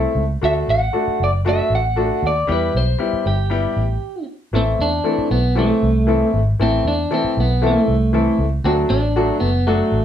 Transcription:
Already playing: A3 C4 E4 A4
0.15 C#2
0.42 D2 A3 D4 F#4 A4 E5
0.68 A1 F#5
0.93 A3 D4 F#4 A4
1.07 muted fingered electric bass stroke
1.20 F#1 D5
1.45 A3 D4 F#4 A4
1.49 E5
1.70 A1
1.75 F#5
1.96 A3 D4 F#4 A4
2.23 D#2
2.27 D5
2.47 E2 G3 B3 E4 G4
2.52 B4
2.75 B1 C5
2.99 G3 B3 E4 G4
3.13 muted fingered electric bass stroke
3.26 G1 G4
3.50 G3 B3 E4 G4
3.77 A1
4.53 A1 E3 A3 C4 E4 A4
4.79 E2 D4
5.04 E3 A3 C4 E4 A4
5.18 muted fingered electric bass stroke
5.31 B1 B3
5.55 E3 A3 C4 E4 A4
5.83 C2
6.07 E3 A3 C4 E4 A4
6.34 G#1
6.59 A1 E3 A3 C4 E4 A4
6.85 E2 D4
7.11 E3 A3 C4 E4 A4
7.24 muted fingered electric bass stroke
7.37 B1 B3
7.62 E3 A3 C4 E4 A4
7.67 A3
7.88 C2
8.13 E3 A3 C4 E4 A4
8.39 C#2
8.64 D2 F#3 A3 C4 D4 F#4 A4
8.90 A1 D4
9.16 F#3 A3 D4 F#4 A4
9.40 F#1 B3
9.67 F#3 A3 D4 F#4 A4
9.92 A1

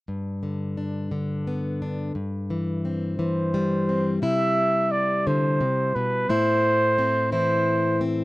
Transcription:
0.08 G2
0.43 D3
0.77 D4
1.11 D3
1.47 B3
1.82 D4
2.15 G2
2.50 E3
2.85 C4
3.18 E3 C5
3.54 G3
3.89 C4
4.22 C3 E4 E5
4.91 D5
5.27 D3 C5
5.61 C3
5.95 B2 B4
6.29 A2 E4 C5
6.98 C4
7.32 E3 E4 C5
8.01 C4

